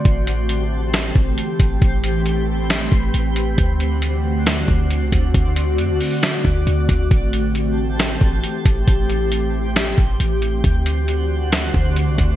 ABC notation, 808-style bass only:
X:1
M:4/4
L:1/16
Q:1/4=136
K:Ador
V:1 name="808-style bass" clef=bass
A,,,8- A,,,2 A,,,2 z2 A,,,2 | A,,,8- A,,,2 A,,,2 A,,,4 | D,,8- D,,2 D,,3 C,, D,,2 | D,,4 F,, D,, z4 D,,2 D,,2 D,,2 |
A,,,8- A,,,2 A,,,2 z2 A,,,2 | A,,,8- A,,,2 A,,,2 A,,,4 | D,,8- D,,2 D,,3 C,, D,,2 |]